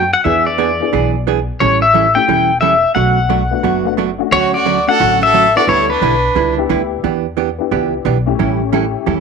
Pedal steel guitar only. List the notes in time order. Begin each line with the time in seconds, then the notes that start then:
Already playing: G5
0.13 F#5
0.24 E5
0.47 D5
1.60 C#5
1.82 E5
2.15 G5
2.61 E5
2.95 F#5
4.32 C#5
4.54 D5
4.89 F#5
5.23 E5
5.57 D5
5.69 C#5
5.90 B4